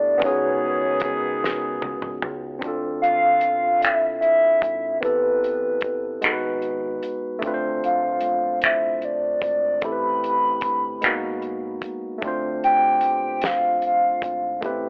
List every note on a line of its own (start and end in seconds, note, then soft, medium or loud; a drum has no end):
0.00 0.19 A1 loud
0.00 0.17 B3 medium
0.00 0.18 D4 medium
0.00 0.19 E4 medium
0.00 0.20 G4 medium
0.00 0.21 A4 medium
0.00 0.26 D5 medium
0.18 2.56 B3 medium
0.18 2.57 C#4 medium
0.18 closed hi-hat medium
0.22 1.78 C#2 loud
0.22 2.18 D#3 medium
0.22 2.18 B3 medium
0.22 2.58 D#4 medium
0.22 0.30 F4 soft
0.22 2.18 G#4 medium
0.22 1.13 C#5 loud
0.22 kick loud
0.26 2.60 G#4 medium
0.31 2.63 F#4 medium
1.00 kick medium
1.00 closed hi-hat medium
1.44 snare medium
1.82 2.19 C#2 loud
1.82 high tom medium
2.02 mid tom medium
2.22 2.59 C#2 medium
2.22 mid tom loud
2.59 4.97 C4 medium
2.59 4.98 D4 medium
2.59 kick loud
2.59 closed hi-hat medium
2.63 3.44 D2 medium
2.63 5.00 F4 medium
2.68 5.01 A4 medium
3.02 3.82 F5 loud
3.02 closed hi-hat medium
3.41 4.59 B1 medium
3.41 closed hi-hat medium
3.82 3.93 F5 loud
3.82 finger snap medium
3.82 closed hi-hat medium
3.93 4.20 E5 loud
4.21 4.98 E5 loud
4.21 closed hi-hat soft
4.62 4.99 G#1 medium
4.62 kick medium
4.62 closed hi-hat medium
5.01 5.83 A1 medium
5.01 6.21 B3 medium
5.01 6.22 C4 soft
5.01 6.23 E4 medium
5.01 6.23 G4 soft
5.01 6.58 B4 medium
5.01 kick loud
5.01 closed hi-hat medium
5.05 6.24 A4 medium
5.44 closed hi-hat medium
5.81 6.19 G1 medium
5.81 kick medium
5.81 closed hi-hat medium
6.21 6.99 G#1 medium
6.21 7.42 G#3 medium
6.21 7.42 B3 medium
6.21 7.43 D#4 medium
6.21 7.44 F#4 medium
6.21 finger snap loud
6.21 closed hi-hat medium
6.26 6.31 A4 medium
6.32 7.46 B4 medium
6.62 closed hi-hat soft
7.03 closed hi-hat medium
7.39 9.77 A3 medium
7.39 9.78 D4 medium
7.39 kick loud
7.39 closed hi-hat medium
7.43 8.23 D2 medium
7.43 9.79 C4 medium
7.43 9.80 F4 medium
7.47 7.51 B4 medium
7.54 9.84 C5 medium
7.84 8.59 F5 medium
7.84 closed hi-hat medium
8.21 9.39 B1 medium
8.21 closed hi-hat medium
8.62 9.06 E5 medium
8.62 finger snap medium
8.62 closed hi-hat medium
9.02 9.86 D5 medium
9.02 closed hi-hat soft
9.42 9.78 G#1 medium
9.42 kick medium
9.42 closed hi-hat medium
9.81 10.63 A1 medium
9.81 11.02 A3 medium
9.81 11.02 C4 medium
9.81 11.03 E4 soft
9.81 11.03 G4 medium
9.81 11.43 B5 loud
9.81 kick loud
9.81 closed hi-hat medium
9.86 9.91 A4 medium
9.92 11.07 B4 medium
10.24 closed hi-hat medium
10.61 10.99 G1 medium
10.61 kick medium
10.61 closed hi-hat medium
11.01 11.79 G#1 medium
11.01 12.22 G#3 medium
11.01 12.23 B3 medium
11.01 12.23 D#4 medium
11.01 12.24 F#4 medium
11.01 finger snap loud
11.01 closed hi-hat medium
11.06 12.24 A#3 medium
11.42 closed hi-hat soft
11.82 kick medium
11.82 closed hi-hat medium
12.18 14.56 A3 medium
12.18 14.58 D4 medium
12.18 kick loud
12.18 closed hi-hat medium
12.23 13.04 D2 medium
12.23 14.59 C4 medium
12.23 14.60 F4 medium
12.28 14.61 C5 medium
12.64 13.47 G5 loud
12.64 closed hi-hat medium
13.01 14.19 B1 medium
13.01 closed hi-hat medium
13.42 snare loud
13.42 closed hi-hat medium
13.46 13.84 F5 medium
13.82 closed hi-hat soft
13.86 14.60 F5 medium
14.22 14.59 G#1 medium
14.22 kick medium
14.22 closed hi-hat medium
14.61 14.89 A1 medium
14.61 14.89 A3 medium
14.61 14.69 B3 soft
14.61 14.89 E4 medium
14.61 14.89 G4 medium
14.61 kick loud
14.61 closed hi-hat medium
14.66 14.89 C4 medium
14.66 14.89 B4 medium